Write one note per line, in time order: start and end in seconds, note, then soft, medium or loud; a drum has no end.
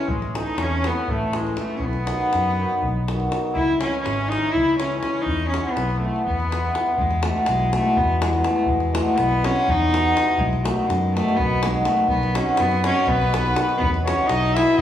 0.00 0.14 E3 medium
0.00 0.14 G#3 soft
0.00 0.10 C#4 medium
0.00 0.11 C#4 loud
0.08 0.39 A1 medium
0.08 0.35 G#3 medium
0.08 0.36 G#3 medium
0.08 davul low medium
0.22 davul high soft
0.35 0.85 E3 medium
0.35 0.55 A3 medium
0.35 0.56 C#4 medium
0.35 0.60 D#4 medium
0.35 0.56 E4 medium
0.35 davul high medium
0.39 0.64 D#4 medium
0.47 davul high soft
0.58 0.89 E2 loud
0.58 0.87 C#4 medium
0.58 davul high medium
0.62 0.88 C#4 loud
0.84 1.34 E3 medium
0.84 1.06 A3 medium
0.84 1.11 B3 medium
0.84 1.13 B3 medium
0.84 1.07 C#4 medium
0.84 1.07 E4 medium
0.84 davul high medium
1.08 1.53 A1 medium
1.08 1.37 A3 medium
1.08 1.38 A3 medium
1.08 davul low medium
1.33 1.54 E3 medium
1.33 1.61 G#3 medium
1.33 1.54 A3 medium
1.33 1.56 C#4 medium
1.33 1.56 E4 medium
1.33 davul high medium
1.47 davul high soft
1.55 1.87 E3 medium
1.55 1.77 A3 soft
1.55 1.77 C#4 medium
1.55 1.77 E4 medium
1.55 davul high medium
1.59 1.78 A3 medium
1.76 1.83 C#4 medium
1.76 1.86 C#4 medium
1.76 davul low medium
1.81 2.12 B1 medium
1.81 3.31 B3 medium
1.81 3.32 B3 loud
1.93 davul high soft
2.05 2.58 D#3 medium
2.05 2.58 F#3 medium
2.05 2.27 B3 medium
2.05 2.27 D#4 medium
2.05 davul high medium
2.21 davul high soft
2.33 2.64 F#2 medium
2.33 davul high medium
2.59 3.06 D#3 medium
2.59 3.06 F#3 medium
2.59 2.79 B3 medium
2.59 2.79 D#4 medium
2.83 3.27 B1 medium
2.83 davul low medium
3.07 3.28 D#3 medium
3.07 3.29 F#3 medium
3.07 3.28 B3 medium
3.07 3.28 D#4 medium
3.07 davul high medium
3.20 davul high soft
3.29 3.59 D#3 medium
3.29 3.59 F#3 medium
3.29 3.50 B3 medium
3.29 3.50 D#4 medium
3.29 davul high medium
3.53 3.85 C#2 medium
3.53 3.78 E4 medium
3.53 3.79 E4 loud
3.53 davul low medium
3.68 davul high soft
3.80 4.27 E3 medium
3.80 4.28 G#3 medium
3.80 4.01 C#4 medium
3.80 4.00 C#4 medium
3.80 4.01 C#4 medium
3.80 4.01 E4 medium
3.80 davul high medium
3.93 davul high soft
4.00 4.29 C#4 medium
4.00 4.31 C#4 medium
4.06 4.36 G#1 loud
4.06 davul high medium
4.28 4.77 E3 medium
4.28 4.78 G#3 medium
4.28 4.51 C#4 medium
4.28 4.53 D#4 loud
4.28 4.53 D#4 medium
4.28 4.51 E4 medium
4.28 davul high medium
4.52 4.76 E4 loud
4.52 4.77 E4 loud
4.52 davul low medium
4.56 4.99 C#2 medium
4.77 5.03 E3 medium
4.77 5.03 G#3 medium
4.77 4.98 C#4 medium
4.77 4.99 C#4 medium
4.77 5.00 C#4 medium
4.77 davul high medium
4.81 5.00 E4 medium
4.92 davul high soft
4.98 5.23 C#4 medium
5.03 5.31 E3 medium
5.03 5.31 G#3 soft
5.03 5.23 C#4 medium
5.03 5.23 E4 medium
5.03 davul high medium
5.21 5.47 D#4 loud
5.21 5.48 D#4 medium
5.26 5.57 E2 medium
5.26 davul low medium
5.40 davul high soft
5.48 5.73 C#4 medium
5.53 6.02 E3 medium
5.53 6.03 G#3 medium
5.53 5.74 B3 medium
5.53 5.74 E4 medium
5.53 davul high medium
5.65 davul high soft
5.71 5.94 B3 medium
5.71 5.93 B3 medium
5.77 6.07 B1 loud
5.77 davul high medium
5.90 6.00 B3 medium
5.90 6.01 B3 medium
5.90 davul high soft
5.98 6.23 A3 medium
5.98 6.25 A3 medium
6.03 6.53 E3 medium
6.03 6.53 G#3 medium
6.03 6.24 B3 medium
6.03 6.24 E4 medium
6.16 davul high soft
6.24 6.69 E2 medium
6.24 6.92 B3 medium
6.24 6.93 B3 medium
6.24 davul low medium
6.40 davul high soft
6.52 6.74 E3 medium
6.52 6.76 G#3 medium
6.52 6.72 B3 medium
6.52 6.73 E4 medium
6.52 davul high medium
6.65 davul high soft
6.75 7.03 E3 medium
6.75 7.03 G#3 medium
6.75 6.95 B3 medium
6.75 6.96 E4 medium
6.75 davul high medium
6.86 davul high soft
6.97 7.28 E2 loud
6.97 7.26 G#3 medium
6.97 davul low medium
7.11 davul high soft
7.23 7.72 B2 medium
7.23 7.73 E3 medium
7.23 7.73 G#3 medium
7.23 7.48 A3 medium
7.23 7.44 B3 medium
7.23 7.45 E4 medium
7.23 davul high medium
7.46 7.78 B1 loud
7.46 7.74 G#3 loud
7.46 davul high medium
7.73 8.20 B2 medium
7.73 8.21 E3 medium
7.73 8.22 G#3 medium
7.73 7.98 A3 medium
7.73 7.94 B3 medium
7.73 7.94 E4 medium
7.73 davul high medium
7.86 davul high soft
7.97 8.41 E2 medium
7.97 8.22 B3 loud
7.97 davul low medium
8.21 8.44 B2 medium
8.21 8.45 E3 medium
8.21 8.47 G#3 medium
8.21 8.46 G#3 medium
8.21 8.42 B3 medium
8.21 8.42 E4 medium
8.21 davul high medium
8.33 davul high soft
8.44 8.91 B2 medium
8.44 8.91 E3 medium
8.44 8.93 G#3 medium
8.44 8.69 A3 medium
8.44 8.65 B3 medium
8.44 8.66 E4 medium
8.44 davul high medium
8.56 davul high soft
8.66 8.99 E2 medium
8.66 8.95 G#3 medium
8.66 davul low medium
8.80 davul high soft
8.92 9.42 B2 medium
8.92 9.42 E3 medium
8.92 9.42 G#3 medium
8.92 9.19 A3 medium
8.92 9.14 B3 medium
8.92 9.14 E4 medium
8.92 davul high medium
9.17 9.48 B1 medium
9.17 9.46 B3 loud
9.17 davul high medium
9.43 9.89 B2 medium
9.43 9.90 E3 medium
9.43 9.90 G#3 medium
9.43 9.64 B3 medium
9.43 9.71 C#4 loud
9.43 9.64 E4 medium
9.43 davul high medium
9.56 davul high soft
9.68 10.11 E2 loud
9.68 10.40 D#4 loud
9.68 davul low medium
9.91 10.13 B2 medium
9.91 10.14 E3 medium
9.91 10.14 G#3 medium
9.91 10.12 B3 medium
9.91 10.11 E4 medium
9.91 davul high medium
10.14 10.44 B2 medium
10.14 10.44 E3 medium
10.14 10.44 G#3 medium
10.14 10.35 B3 medium
10.14 10.35 E4 medium
10.14 davul high medium
10.28 davul high soft
10.38 10.69 B1 medium
10.38 10.66 G#3 medium
10.38 davul low medium
10.53 davul high soft
10.63 11.12 B2 medium
10.63 11.13 D#3 medium
10.63 11.14 F#3 medium
10.63 10.88 A3 medium
10.63 10.84 B3 medium
10.63 10.85 D#4 medium
10.63 davul high medium
10.87 11.19 F#2 loud
10.87 11.14 G#3 medium
10.87 davul high medium
11.12 11.62 B2 medium
11.12 11.63 D#3 medium
11.12 11.62 F#3 medium
11.12 11.38 A3 loud
11.12 11.35 B3 medium
11.17 11.35 D#4 medium
11.17 davul high medium
11.28 davul high soft
11.37 11.81 B1 medium
11.37 11.67 B3 loud
11.37 davul low medium
11.63 11.84 B2 medium
11.63 11.86 D#3 medium
11.63 11.86 F#3 medium
11.63 11.87 G#3 medium
11.63 11.83 B3 medium
11.63 11.84 D#4 medium
11.63 davul high medium
11.74 davul high soft
11.85 12.34 B2 medium
11.85 12.34 D#3 medium
11.85 12.35 F#3 medium
11.85 12.08 A3 medium
11.85 12.06 B3 medium
11.85 12.06 D#4 medium
11.85 davul high medium
11.97 davul high soft
12.08 12.40 B1 medium
12.08 12.37 B3 medium
12.08 davul low medium
12.23 davul high soft
12.35 12.83 B2 medium
12.35 12.83 D#3 medium
12.35 12.84 F#3 medium
12.35 12.56 B3 medium
12.35 12.61 C#4 medium
12.35 12.56 D#4 medium
12.35 davul high medium
12.57 12.90 F#2 loud
12.57 12.85 B3 loud
12.57 davul high medium
12.71 davul high soft
12.84 13.32 B2 medium
12.84 13.33 D#3 medium
12.84 13.34 F#3 medium
12.84 13.05 B3 medium
12.84 13.09 C#4 loud
12.84 13.05 D#4 medium
12.84 13.10 C#5 medium
12.84 davul high medium
13.07 13.52 B1 loud
13.07 13.77 B3 loud
13.07 13.79 B4 loud
13.07 davul low medium
13.22 davul high soft
13.33 13.55 B2 medium
13.33 13.54 D#3 medium
13.33 13.55 F#3 medium
13.33 13.53 B3 medium
13.33 13.54 D#4 medium
13.33 davul high medium
13.46 davul high soft
13.56 13.85 B2 medium
13.56 13.85 D#3 medium
13.56 13.85 F#3 medium
13.56 13.76 B3 medium
13.56 13.76 D#4 medium
13.56 davul high medium
13.69 davul high soft
13.77 14.10 E2 medium
13.77 13.90 B3 loud
13.77 13.91 B4 medium
13.82 davul low loud
13.94 davul high soft
14.04 14.55 B2 medium
14.04 14.55 E3 medium
14.04 14.55 G#3 medium
14.04 14.25 B3 medium
14.04 14.28 C#4 loud
14.04 14.26 E4 medium
14.04 14.29 C#5 medium
14.04 davul high medium
14.27 14.59 B1 medium
14.27 14.57 D#4 loud
14.27 14.55 D#5 medium
14.27 davul high medium
14.54 14.81 B2 medium
14.54 14.81 E3 medium
14.54 14.81 G#3 medium
14.54 14.76 B3 medium
14.54 14.81 E4 loud
14.54 14.76 E4 medium
14.54 14.79 E5 loud
14.54 davul high medium
14.67 davul high soft
14.77 14.81 D#5 loud